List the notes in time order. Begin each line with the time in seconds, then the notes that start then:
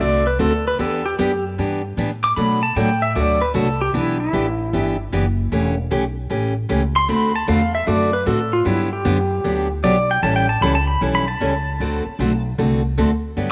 0.00 C2 D3 A3 C4 F#4 A4 D5
0.27 B4
0.39 D2 D3 A3 C4 F#4 A4
0.68 B4
0.79 E2 E3 B3 D4 G4 A4
1.06 G4
1.18 F#2 E3 B3 D4 G4
1.58 G2 E3 B3 D4 G4
1.97 A2 E3 B3 D4 G4
2.24 D6
2.36 B2 F#3 A3 D4 F#4 B5
2.63 A5
2.76 A2 B2 F#3 A3 D4 F#4 G5
3.02 E5
3.15 D2 B2 F#3 A3 D4 F#4 D5
3.42 B4
3.54 C2 B2 F#3 A3 D4 F#4 A4
3.81 G4
3.94 B1 E3 B3 D4 E4 G4
4.20 E4
4.33 A1 E3 B3 D4 G4
4.73 G1 E3 B3 D4 G4
5.12 F#1 E3 B3 D4 G4
5.52 E1 E3 A3 C#4 G4
5.91 B1 E3 A3 C#4 G4
6.30 A1 E3 A3 C#4 G4
6.69 C#2 E3 A3 C#4 G4
6.96 C6
7.08 D2 D3 A3 C4 F#4 A4 B5
7.36 A5
7.47 E2 D3 A3 C4 F#4 A4 F5
7.75 E5
7.86 F#2 D3 A3 C4 F#4 A4 D5
8.13 B4
8.26 A2 D3 A3 C4 F#4 A4
8.53 F4
8.65 G2 D3 F#3 B3 D4 E4 G4
8.93 G4
9.05 F#2 D3 F#3 B3 D4 G4
9.44 D2 D3 F#3 B3 D4 G4
9.83 B1 D3 F#3 B3 D4 G4 D5
10.11 G5
10.23 A1 E3 G3 C#4 E4 A4 A5
10.36 G5
10.49 A5
10.61 C#2 E3 G3 C#4 E4 A4 B5
10.75 A5
10.87 B5
11.01 B1 E3 G3 C#4 E4 A4
11.15 B5
11.28 A5
11.40 C#2 E3 G3 C#4 E4 A4
11.80 D2 D3 A3 C4 F#4 A4
12.06 muted upright bass stroke
12.19 B1 D3 A3 C4 F#4 A4
12.58 C2 D3 A3 C4 F#4 A4
12.98 D2 D3 A3 C4 F#4 A4
13.37 G2 D3 F#3 B3 D4 G4